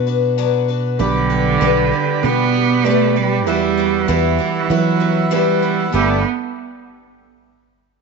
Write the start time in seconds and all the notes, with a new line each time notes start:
Already playing: B2
0.07 B3 D4 F#4 B4
0.38 B2 F#3 B3 D4 F#4 B4
0.68 B3 D4 F#4 B4
0.99 B1 B2 D3 G3 B3 D4 G4 B4 D5 B5
1.30 D4 G4 B4
1.61 B1 G3 B3 D4 G4 B4 D5
1.92 D4 G4 B4
2.23 B2 G3 B3 D4 G4 B4 D5
2.54 D4 G4 B4
2.84 G3 A3 B3 D4 G4 B4 D5
3.16 G3 D4 G4 B4
3.46 E2 E3 G3 B3 E4 F#4 B4 E5 F#5
3.78 G3 B3 E4 F#4
4.08 E2 E3 G3 B3 E4 F#4 B4 E5
4.38 G3 B3 E4 F#4
4.70 E3 F#3 B3 E4 F#4 B4 E5
5.00 B3 E4 F#4
5.31 E2 E3 G3 B3 E4 F#4 B4 E5
5.62 G3 B3 E4 F#4
5.92 G1 G2 D3 G3 A3 B3 E4 G4 A4 B4 D5 E5 G5